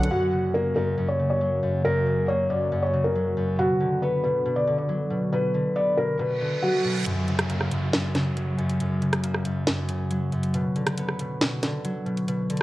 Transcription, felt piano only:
0.11 0.52 F#4 loud
0.54 0.74 A#4 medium
0.76 1.07 A#4 medium
1.08 1.28 C#5 medium
1.30 1.81 C#5 medium
1.85 2.26 A#4 loud
2.28 2.48 C#5 medium
2.50 2.80 D5 medium
2.82 3.02 C#5 medium
3.04 3.55 A#4 medium
3.59 3.99 F#4 loud
4.02 4.22 B4 medium
4.23 4.54 B4 medium
4.56 4.76 D5 medium
4.78 5.29 D5 medium
5.32 5.73 B4 loud
5.76 5.95 D5 medium
5.97 6.17 A#4 medium
6.19 6.60 B4 medium
6.63 6.82 F#4 loud

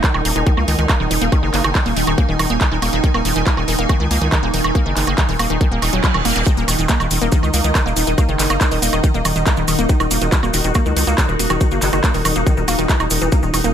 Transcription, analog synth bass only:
0.14 0.22 D#1 medium
0.25 0.33 D#1 medium
0.36 0.43 D#1 medium
0.57 0.65 C#2 medium
0.68 0.76 C#2 loud
0.79 0.86 C#2 medium
1.00 1.08 D#1 medium
1.11 1.18 D#1 medium
1.22 1.29 D#1 medium
1.43 1.51 F#1 medium
1.54 1.61 F#1 loud
1.64 1.72 F#1 loud
1.86 1.93 D#1 medium
1.97 2.04 D#1 medium
2.07 2.15 D#1 medium
2.29 2.36 D#1 medium
2.39 2.47 D#1 loud
2.50 2.58 D#1 medium
2.72 2.79 D#1 medium
2.82 2.90 D#1 loud
2.93 3.01 D#1 loud
3.14 3.22 D#1 medium
3.25 3.33 D#1 loud
3.36 3.43 D#1 loud
3.57 3.65 D#1 medium
3.68 3.76 D#1 medium
3.79 3.86 D#1 medium
4.00 4.08 C#2 medium
4.11 4.18 C#2 loud
4.22 4.29 C#2 medium
4.43 4.51 D#1 medium
4.54 4.61 D#1 medium
4.64 4.72 D#1 medium
4.86 4.93 F#1 medium
4.97 5.04 F#1 loud
5.07 5.15 F#1 loud
5.29 5.36 D#1 medium
5.39 5.47 D#1 loud
5.50 5.58 D#1 medium
5.72 5.79 D#1 medium
5.82 5.90 D#1 loud
5.93 6.01 D#1 medium
6.14 6.22 D#1 medium
6.25 6.33 D#1 medium
6.36 6.43 D#1 medium
6.57 6.65 D#1 medium
6.68 6.76 D#1 loud
6.79 6.86 D#1 medium
7.00 7.08 D#1 medium
7.11 7.18 D#1 loud
7.22 7.29 D#1 medium
7.43 7.51 C#2 medium
7.54 7.61 C#2 loud
7.64 7.72 C#2 medium
7.86 7.93 D#1 medium
7.97 8.04 D#1 loud
8.07 8.15 D#1 loud
8.29 8.36 F#1 medium
8.39 8.47 F#1 loud
8.50 8.58 F#1 loud
8.72 8.79 D#1 medium
8.82 8.90 D#1 medium
8.93 9.01 D#1 medium
9.14 9.22 D#1 medium
9.25 9.33 D#1 loud
9.36 9.43 D#1 medium
9.57 9.65 D#1 medium
9.68 9.76 D#1 loud
9.79 9.86 D#1 medium
10.00 10.08 D#1 medium
10.11 10.18 D#1 loud
10.22 10.29 D#1 loud
10.43 10.51 D#1 medium
10.54 10.61 D#1 medium
10.64 10.72 D#1 loud
10.86 10.93 C#2 medium
10.97 11.04 C#2 loud
11.07 11.15 C#2 medium
11.29 11.36 D#1 medium
11.39 11.47 D#1 medium
11.50 11.58 D#1 loud
11.72 11.79 F#1 medium
11.82 11.90 F#1 loud
11.93 12.01 F#1 loud
12.14 12.22 D#1 medium
12.25 12.33 D#1 loud
12.36 12.43 D#1 medium
12.57 12.65 D#1 medium
12.68 12.76 D#1 medium
12.79 12.86 D#1 medium
13.00 13.08 D#1 medium
13.11 13.18 D#1 loud
13.22 13.29 D#1 loud
13.43 13.51 D#1 medium
13.54 13.61 D#1 loud
13.64 13.72 D#1 loud

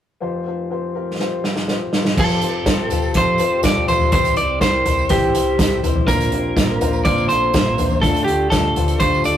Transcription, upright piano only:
0.21 2.13 F1 soft
0.21 2.13 F2 medium
0.21 0.42 C4 medium
0.21 0.42 F4 medium
0.21 0.42 G4 medium
0.21 0.43 C5 medium
0.46 0.67 C4 medium
0.46 0.68 F4 medium
0.46 0.68 G4 medium
0.46 0.68 C5 medium
0.70 0.91 C4 medium
0.70 0.92 F4 medium
0.70 0.92 G4 medium
0.70 0.92 C5 medium
0.95 1.16 C4 medium
0.95 1.16 F4 medium
0.95 1.16 G4 medium
0.95 1.16 A#4 medium
1.20 1.41 C4 medium
1.20 1.41 F4 medium
1.20 1.41 G4 medium
1.20 1.41 C5 medium
1.44 1.65 C4 medium
1.44 1.65 F4 medium
1.44 1.66 G4 medium
1.44 1.66 C5 medium
1.69 1.90 C4 medium
1.69 1.90 F4 medium
1.69 1.90 G4 medium
1.69 1.90 C5 medium
1.93 2.14 C4 medium
1.93 2.14 F4 medium
1.93 2.15 G4 medium
1.93 2.15 C5 medium
2.18 2.38 C4 medium
2.18 2.39 F4 medium
2.18 2.39 G4 medium
2.18 2.39 A4 medium
2.42 2.63 C4 medium
2.42 2.63 F4 medium
2.42 2.63 G4 medium
2.42 2.63 C5 medium
2.66 2.87 C4 medium
2.66 2.87 F4 medium
2.66 2.88 G4 medium
2.66 2.88 C5 medium
2.91 3.12 C4 medium
2.91 3.12 F4 medium
2.91 3.12 G4 medium
2.91 3.12 A4 medium
3.15 3.36 C4 medium
3.15 3.36 F4 medium
3.15 3.37 G4 medium
3.15 3.37 A4 medium
3.39 3.60 C4 medium
3.39 3.61 F4 medium
3.39 3.61 G4 medium
3.39 3.61 C5 medium
3.64 3.85 C4 medium
3.64 3.85 F4 medium
3.64 3.85 G4 medium
3.64 3.85 C5 medium
3.89 4.09 C4 medium
3.89 4.09 F4 medium
3.89 4.10 G4 medium
3.89 4.10 A4 medium
4.12 4.82 C3 medium
4.12 4.33 C4 medium
4.12 4.33 E4 medium
4.12 4.34 G4 medium
4.12 4.34 C5 loud
4.37 4.58 C4 medium
4.37 4.58 E4 medium
4.37 4.58 G4 medium
4.37 4.58 D5 medium
4.60 4.82 C4 medium
4.60 4.82 E4 medium
4.60 4.82 G4 medium
4.60 4.82 A#4 medium
4.84 5.06 C4 medium
4.84 5.06 E4 medium
4.84 5.06 G4 medium
4.84 5.07 C5 medium
5.09 5.30 C4 loud
5.09 5.31 E4 medium
5.09 5.31 G4 medium
5.09 5.31 C5 loud
5.33 5.55 C4 medium
5.33 5.55 E4 medium
5.33 5.55 G4 medium
5.33 5.55 C5 medium
5.57 5.79 C4 medium
5.57 5.80 G4 medium
5.57 5.80 A4 medium
5.83 6.04 C4 medium
5.83 6.04 E4 medium
5.83 6.05 G4 medium
5.83 6.05 C5 medium
6.06 6.77 A#2 medium
6.06 6.28 C4 medium
6.06 6.28 D4 medium
6.06 6.28 F4 medium
6.06 6.29 A#4 loud
6.31 6.53 C4 medium
6.31 6.53 D4 medium
6.31 6.53 F4 medium
6.31 6.53 G4 medium
6.56 6.77 C4 medium
6.56 6.77 D4 medium
6.56 6.78 F4 medium
6.56 6.78 A#4 medium
6.80 7.02 C4 medium
6.80 7.02 D4 medium
6.80 7.02 F4 medium
6.80 7.02 C5 medium
7.05 7.26 C4 medium
7.05 7.26 D4 medium
7.05 7.26 F4 medium
7.05 7.27 C5 loud
7.29 7.50 C4 medium
7.29 7.51 D4 medium
7.29 7.51 F4 medium
7.29 7.51 A4 medium
7.54 7.75 C4 medium
7.54 7.75 D4 medium
7.54 7.75 F4 medium
7.54 7.75 C5 medium
7.78 7.99 C4 medium
7.78 7.99 D4 medium
7.78 8.00 F4 medium
7.78 8.00 C5 medium
8.02 8.72 D3 medium
8.02 8.24 A3 medium
8.02 8.24 D4 medium
8.02 8.24 F4 medium
8.02 8.24 A4 medium
8.27 8.48 A3 medium
8.27 8.48 D4 medium
8.27 8.49 F4 medium
8.27 8.49 A4 medium
8.51 8.72 A3 medium
8.51 8.73 D4 medium
8.51 8.73 F4 medium
8.51 8.73 G4 medium
8.76 8.97 A3 medium
8.76 8.97 D4 medium
8.76 8.97 F4 medium
8.76 8.97 C5 medium
8.99 9.21 A3 medium
8.99 9.21 D4 medium
8.99 9.21 F4 medium
8.99 9.22 G4 medium
9.24 9.37 A3 medium
9.24 9.37 D4 medium
9.24 9.37 F4 medium
9.24 9.37 A4 medium

